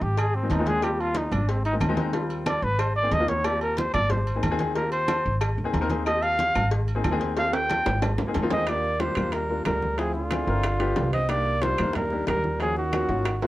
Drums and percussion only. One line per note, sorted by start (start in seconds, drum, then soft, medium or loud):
0.17 cowbell loud
0.17 high conga soft
0.17 low agogo loud
0.17 claves medium
0.34 high conga soft
0.50 cowbell medium
0.50 high conga medium
0.50 low timbale medium
0.50 low agogo medium
0.66 cowbell medium
0.66 high conga medium
0.82 cowbell loud
0.82 high conga soft
0.82 low agogo loud
0.82 claves medium
0.99 high conga soft
0.99 low agogo loud
1.15 cowbell medium
1.15 high conga medium
1.32 low conga medium
1.32 low agogo loud
1.32 claves medium
1.48 cowbell loud
1.48 high conga soft
1.65 high conga soft
1.65 low agogo medium
1.81 cowbell medium
1.81 high conga loud
1.81 low agogo loud
1.81 claves medium
1.97 cowbell medium
1.97 high conga medium
2.14 cowbell loud
2.14 high conga soft
2.14 low agogo medium
2.30 high conga soft
2.30 low agogo medium
2.46 cowbell medium
2.46 high conga loud
2.46 low agogo loud
2.46 claves medium
2.79 cowbell loud
2.79 high conga soft
2.79 low agogo loud
2.79 claves medium
2.96 high conga soft
3.12 cowbell medium
3.12 high conga medium
3.12 low agogo medium
3.29 cowbell medium
3.29 high conga medium
3.44 cowbell medium
3.44 low agogo loud
3.44 claves medium
3.61 high conga soft
3.61 low agogo medium
3.77 cowbell medium
3.77 high conga medium
3.93 low conga medium
3.93 low agogo loud
3.93 claves medium
4.09 cowbell loud
4.09 high conga soft
4.09 low conga medium
4.27 high conga soft
4.27 low agogo medium
4.42 cowbell medium
4.42 high conga medium
4.42 low agogo loud
4.42 claves medium
4.59 cowbell medium
4.59 high conga medium
4.75 cowbell loud
4.75 high conga soft
4.75 low agogo medium
4.92 high conga soft
4.92 low agogo medium
5.08 cowbell medium
5.08 high conga loud
5.08 low agogo loud
5.08 claves medium
5.41 cowbell loud
5.41 high conga soft
5.41 low agogo loud
5.41 claves medium
5.57 high conga soft
5.73 cowbell medium
5.73 high conga loud
5.73 low agogo medium
5.90 cowbell medium
5.90 high conga medium
6.06 cowbell loud
6.06 high conga soft
6.06 low agogo loud
6.06 claves medium
6.22 high conga soft
6.22 low agogo loud
6.39 cowbell medium
6.39 high conga medium
6.55 low conga medium
6.55 low agogo loud
6.55 claves medium
6.71 cowbell loud
6.71 high conga soft
6.88 high conga soft
6.88 low agogo medium
7.04 cowbell medium
7.04 high conga loud
7.04 low agogo loud
7.04 claves medium
7.21 cowbell medium
7.21 high conga medium
7.37 cowbell loud
7.37 high conga soft
7.37 high timbale medium
7.37 low agogo medium
7.54 high conga soft
7.54 high timbale loud
7.54 low agogo medium
7.70 cowbell medium
7.70 high conga medium
7.70 low agogo loud
7.70 claves medium
7.86 high bongo loud
7.86 low timbale loud
8.02 cowbell loud
8.02 low bongo medium
8.02 high conga soft
8.02 low timbale loud
8.02 low agogo loud
8.02 claves medium
8.18 low bongo medium
8.18 high conga soft
8.18 low timbale medium
8.34 cowbell medium
8.34 low bongo medium
8.34 high conga medium
8.34 low timbale medium
8.34 low agogo medium
8.50 cowbell medium
8.50 low bongo medium
8.50 high conga medium
8.50 low timbale loud
8.67 high bongo medium
8.67 high timbale medium
8.67 claves medium
8.84 high bongo soft
8.84 high conga soft
9.00 high bongo medium
9.00 high conga medium
9.00 high timbale medium
9.00 low timbale medium
9.15 high bongo soft
9.15 high conga soft
9.15 low conga medium
9.15 high timbale medium
9.15 claves medium
9.32 high bongo medium
9.32 high conga soft
9.32 high timbale medium
9.50 high bongo soft
9.50 high conga soft
9.65 high bongo medium
9.65 low bongo medium
9.65 high conga medium
9.65 high timbale medium
9.65 low timbale medium
9.65 claves medium
9.82 high conga medium
9.98 high bongo medium
9.98 high conga soft
9.98 high timbale medium
10.15 high bongo soft
10.15 high conga soft
10.30 high bongo medium
10.30 high conga medium
10.30 high timbale medium
10.30 low timbale medium
10.30 claves medium
10.48 high bongo soft
10.48 high conga soft
10.63 high bongo medium
10.63 high conga soft
10.63 high timbale medium
10.63 claves medium
10.80 high bongo soft
10.80 high conga soft
10.80 high timbale medium
10.96 high bongo medium
10.96 low bongo medium
10.96 high conga medium
10.96 low timbale medium
11.13 high conga medium
11.13 high timbale medium
11.29 high bongo medium
11.29 high conga soft
11.29 high timbale medium
11.29 claves medium
11.46 high bongo soft
11.46 high conga soft
11.62 high bongo medium
11.62 high conga medium
11.62 high timbale medium
11.62 low timbale medium
11.78 high bongo soft
11.78 high conga soft
11.78 low conga medium
11.78 high timbale medium
11.78 claves medium
11.93 high bongo medium
11.93 high conga soft
11.93 low conga medium
11.93 high timbale medium
12.10 high bongo soft
12.10 high conga soft
12.27 high bongo medium
12.27 low bongo medium
12.27 high conga medium
12.27 high timbale medium
12.27 low timbale medium
12.27 claves medium
12.44 high conga medium
12.60 high bongo medium
12.60 high conga soft
12.60 high timbale medium
12.76 high bongo soft
12.76 high conga soft
12.93 high bongo medium
12.93 high conga medium
12.93 high timbale medium
12.93 low timbale medium
12.93 claves medium
13.10 high bongo soft
13.10 high conga soft
13.26 high bongo medium
13.26 high conga soft
13.26 high timbale medium
13.26 claves medium
13.42 high bongo soft
13.42 high conga soft
13.42 high timbale medium